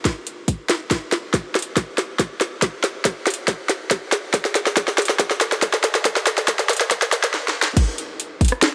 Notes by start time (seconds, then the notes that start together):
0.05 kick, snare, closed hi-hat
0.27 closed hi-hat
0.48 kick, closed hi-hat
0.70 snare, closed hi-hat
0.91 kick, snare, closed hi-hat
1.12 snare, closed hi-hat
1.34 kick, snare, closed hi-hat
1.55 snare, closed hi-hat
1.59 closed hi-hat
1.62 closed hi-hat
1.77 kick, snare, closed hi-hat
1.98 snare, closed hi-hat
2.19 kick, snare, closed hi-hat
2.41 snare, closed hi-hat
2.62 kick, snare, closed hi-hat
2.84 snare, closed hi-hat
3.05 kick, snare, closed hi-hat
3.27 snare, closed hi-hat
3.30 closed hi-hat
3.34 closed hi-hat
3.48 kick, snare, closed hi-hat
3.69 snare, closed hi-hat
3.91 kick, snare, closed hi-hat
4.12 snare, closed hi-hat
4.34 kick, snare, closed hi-hat
4.45 snare
4.55 snare, closed hi-hat
4.67 snare
4.77 kick, snare, closed hi-hat
4.88 snare
4.98 snare, closed hi-hat
5.02 closed hi-hat
5.05 snare, closed hi-hat
5.19 kick, snare, closed hi-hat
5.31 snare
5.41 snare, closed hi-hat
5.52 snare
5.62 kick, snare, closed hi-hat
5.74 snare
5.84 snare, closed hi-hat
5.95 snare
6.05 kick, snare, closed hi-hat
6.16 snare
6.27 snare, closed hi-hat
6.38 snare
6.48 kick, snare, closed hi-hat
6.59 snare
6.69 snare, closed hi-hat
6.73 closed hi-hat
6.77 closed hi-hat
6.81 snare
6.91 kick, snare, closed hi-hat
7.02 snare
7.12 snare, closed hi-hat
7.24 snare
7.34 snare
7.48 snare
7.62 snare
7.77 kick, closed hi-hat, crash
7.98 closed hi-hat
8.20 closed hi-hat
8.41 kick, closed hi-hat
8.45 closed hi-hat
8.48 closed hi-hat
8.52 cross-stick
8.62 snare, closed hi-hat